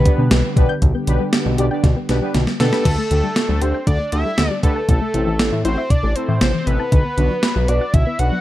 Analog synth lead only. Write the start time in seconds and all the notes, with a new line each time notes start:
Already playing: B4
2.60 A4
3.62 C5
3.87 D5
4.12 E5
4.63 A4
5.65 C5
5.90 D5
6.16 C5
6.41 C5
6.66 B4
7.68 D5
7.93 E5
8.19 F#5